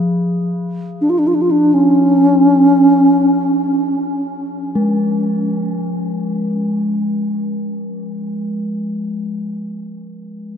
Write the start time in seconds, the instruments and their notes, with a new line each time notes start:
Already playing: singing bowl F3
1.01 bass flute D4
1.10 bass flute F4
1.18 bass flute D4
1.27 bass flute F4
1.34 bass flute D4
1.41 bass flute F4
1.51 bass flute D4
1.74 bass flute C#4
4.75 singing bowl G#3